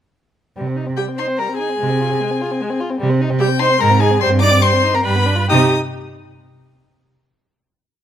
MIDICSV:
0, 0, Header, 1, 5, 480
1, 0, Start_track
1, 0, Key_signature, -3, "minor"
1, 0, Tempo, 407332
1, 665, Time_signature, 3, 2, 24, 8
1, 5462, Tempo, 428571
1, 9265, End_track
2, 0, Start_track
2, 0, Title_t, "Violin"
2, 0, Program_c, 0, 40
2, 1141, Note_on_c, 0, 79, 55
2, 1235, Note_off_c, 0, 79, 0
2, 1395, Note_on_c, 0, 84, 60
2, 1490, Note_off_c, 0, 84, 0
2, 1622, Note_on_c, 0, 82, 66
2, 1861, Note_off_c, 0, 82, 0
2, 1868, Note_on_c, 0, 80, 68
2, 3271, Note_off_c, 0, 80, 0
2, 4002, Note_on_c, 0, 79, 92
2, 4235, Note_on_c, 0, 84, 98
2, 4253, Note_off_c, 0, 79, 0
2, 4489, Note_on_c, 0, 82, 96
2, 4507, Note_off_c, 0, 84, 0
2, 4717, Note_on_c, 0, 80, 94
2, 4735, Note_off_c, 0, 82, 0
2, 4950, Note_off_c, 0, 80, 0
2, 4957, Note_on_c, 0, 84, 105
2, 5051, Note_off_c, 0, 84, 0
2, 5188, Note_on_c, 0, 86, 106
2, 5446, Note_on_c, 0, 84, 96
2, 5464, Note_off_c, 0, 86, 0
2, 5811, Note_on_c, 0, 82, 74
2, 5828, Note_off_c, 0, 84, 0
2, 5930, Note_off_c, 0, 82, 0
2, 5936, Note_on_c, 0, 83, 82
2, 6415, Note_off_c, 0, 83, 0
2, 6420, Note_on_c, 0, 87, 89
2, 6688, Note_off_c, 0, 87, 0
2, 9265, End_track
3, 0, Start_track
3, 0, Title_t, "Viola"
3, 0, Program_c, 1, 41
3, 1142, Note_on_c, 1, 67, 48
3, 1236, Note_off_c, 1, 67, 0
3, 1377, Note_on_c, 1, 72, 56
3, 1633, Note_on_c, 1, 70, 54
3, 1650, Note_off_c, 1, 72, 0
3, 1863, Note_off_c, 1, 70, 0
3, 1870, Note_on_c, 1, 68, 55
3, 3271, Note_off_c, 1, 68, 0
3, 4007, Note_on_c, 1, 67, 74
3, 4101, Note_off_c, 1, 67, 0
3, 4258, Note_on_c, 1, 72, 86
3, 4489, Note_off_c, 1, 72, 0
3, 4495, Note_on_c, 1, 70, 84
3, 4728, Note_off_c, 1, 70, 0
3, 4738, Note_on_c, 1, 68, 77
3, 4969, Note_off_c, 1, 68, 0
3, 4976, Note_on_c, 1, 72, 93
3, 5070, Note_off_c, 1, 72, 0
3, 5220, Note_on_c, 1, 74, 81
3, 5456, Note_off_c, 1, 74, 0
3, 5463, Note_on_c, 1, 72, 77
3, 5811, Note_on_c, 1, 70, 62
3, 5827, Note_off_c, 1, 72, 0
3, 5924, Note_on_c, 1, 71, 65
3, 5941, Note_off_c, 1, 70, 0
3, 6414, Note_off_c, 1, 71, 0
3, 6421, Note_on_c, 1, 63, 83
3, 6688, Note_off_c, 1, 63, 0
3, 9265, End_track
4, 0, Start_track
4, 0, Title_t, "Violin"
4, 0, Program_c, 2, 40
4, 665, Note_on_c, 2, 55, 40
4, 782, Note_on_c, 2, 60, 36
4, 800, Note_off_c, 2, 55, 0
4, 900, Note_on_c, 2, 63, 37
4, 918, Note_off_c, 2, 60, 0
4, 1016, Note_on_c, 2, 60, 38
4, 1034, Note_off_c, 2, 63, 0
4, 1152, Note_on_c, 2, 55, 42
4, 1170, Note_off_c, 2, 60, 0
4, 1275, Note_on_c, 2, 60, 40
4, 1293, Note_off_c, 2, 55, 0
4, 1399, Note_on_c, 2, 63, 42
4, 1417, Note_off_c, 2, 60, 0
4, 1501, Note_on_c, 2, 60, 42
4, 1519, Note_off_c, 2, 63, 0
4, 1626, Note_on_c, 2, 55, 45
4, 1644, Note_off_c, 2, 60, 0
4, 1747, Note_on_c, 2, 60, 42
4, 1764, Note_off_c, 2, 55, 0
4, 1872, Note_on_c, 2, 63, 39
4, 1890, Note_off_c, 2, 60, 0
4, 1993, Note_on_c, 2, 60, 40
4, 2011, Note_off_c, 2, 63, 0
4, 2091, Note_off_c, 2, 60, 0
4, 2098, Note_on_c, 2, 56, 51
4, 2231, Note_on_c, 2, 60, 45
4, 2249, Note_off_c, 2, 56, 0
4, 2360, Note_on_c, 2, 65, 49
4, 2378, Note_off_c, 2, 60, 0
4, 2486, Note_on_c, 2, 60, 49
4, 2504, Note_off_c, 2, 65, 0
4, 2600, Note_on_c, 2, 56, 53
4, 2618, Note_off_c, 2, 60, 0
4, 2717, Note_on_c, 2, 60, 53
4, 2735, Note_off_c, 2, 56, 0
4, 2838, Note_on_c, 2, 65, 51
4, 2855, Note_off_c, 2, 60, 0
4, 2958, Note_on_c, 2, 60, 54
4, 2975, Note_off_c, 2, 65, 0
4, 3077, Note_on_c, 2, 56, 56
4, 3095, Note_off_c, 2, 60, 0
4, 3177, Note_on_c, 2, 60, 59
4, 3194, Note_off_c, 2, 56, 0
4, 3299, Note_on_c, 2, 65, 54
4, 3317, Note_off_c, 2, 60, 0
4, 3419, Note_on_c, 2, 60, 56
4, 3436, Note_off_c, 2, 65, 0
4, 3526, Note_off_c, 2, 60, 0
4, 3533, Note_on_c, 2, 55, 67
4, 3650, Note_on_c, 2, 60, 57
4, 3667, Note_off_c, 2, 55, 0
4, 3779, Note_on_c, 2, 63, 64
4, 3797, Note_off_c, 2, 60, 0
4, 3885, Note_on_c, 2, 60, 58
4, 3903, Note_off_c, 2, 63, 0
4, 4003, Note_on_c, 2, 55, 64
4, 4021, Note_off_c, 2, 60, 0
4, 4106, Note_on_c, 2, 60, 64
4, 4123, Note_off_c, 2, 55, 0
4, 4238, Note_on_c, 2, 63, 65
4, 4256, Note_off_c, 2, 60, 0
4, 4353, Note_on_c, 2, 60, 65
4, 4371, Note_off_c, 2, 63, 0
4, 4469, Note_off_c, 2, 60, 0
4, 4476, Note_on_c, 2, 56, 67
4, 4597, Note_on_c, 2, 60, 60
4, 4615, Note_off_c, 2, 56, 0
4, 4710, Note_on_c, 2, 63, 60
4, 4727, Note_off_c, 2, 60, 0
4, 4834, Note_on_c, 2, 60, 58
4, 4852, Note_off_c, 2, 63, 0
4, 4939, Note_off_c, 2, 60, 0
4, 4946, Note_on_c, 2, 55, 67
4, 5063, Note_on_c, 2, 60, 61
4, 5081, Note_off_c, 2, 55, 0
4, 5190, Note_on_c, 2, 63, 61
4, 5208, Note_off_c, 2, 60, 0
4, 5308, Note_on_c, 2, 60, 56
4, 5326, Note_off_c, 2, 63, 0
4, 5434, Note_on_c, 2, 55, 65
4, 5452, Note_off_c, 2, 60, 0
4, 5561, Note_on_c, 2, 60, 60
4, 5578, Note_off_c, 2, 55, 0
4, 5677, Note_on_c, 2, 63, 64
4, 5694, Note_off_c, 2, 60, 0
4, 5800, Note_on_c, 2, 60, 57
4, 5817, Note_off_c, 2, 63, 0
4, 5913, Note_off_c, 2, 60, 0
4, 5920, Note_on_c, 2, 55, 60
4, 6040, Note_on_c, 2, 59, 54
4, 6057, Note_off_c, 2, 55, 0
4, 6157, Note_on_c, 2, 62, 51
4, 6173, Note_off_c, 2, 59, 0
4, 6267, Note_on_c, 2, 65, 47
4, 6284, Note_off_c, 2, 62, 0
4, 6397, Note_off_c, 2, 65, 0
4, 6403, Note_on_c, 2, 67, 70
4, 6679, Note_off_c, 2, 67, 0
4, 9265, End_track
5, 0, Start_track
5, 0, Title_t, "Cello"
5, 0, Program_c, 3, 42
5, 674, Note_on_c, 3, 48, 45
5, 1073, Note_off_c, 3, 48, 0
5, 2119, Note_on_c, 3, 48, 55
5, 2514, Note_off_c, 3, 48, 0
5, 3542, Note_on_c, 3, 48, 73
5, 3935, Note_off_c, 3, 48, 0
5, 4498, Note_on_c, 3, 44, 70
5, 4896, Note_off_c, 3, 44, 0
5, 4981, Note_on_c, 3, 43, 78
5, 5385, Note_off_c, 3, 43, 0
5, 5945, Note_on_c, 3, 43, 63
5, 6349, Note_off_c, 3, 43, 0
5, 6436, Note_on_c, 3, 48, 83
5, 6697, Note_off_c, 3, 48, 0
5, 9265, End_track
0, 0, End_of_file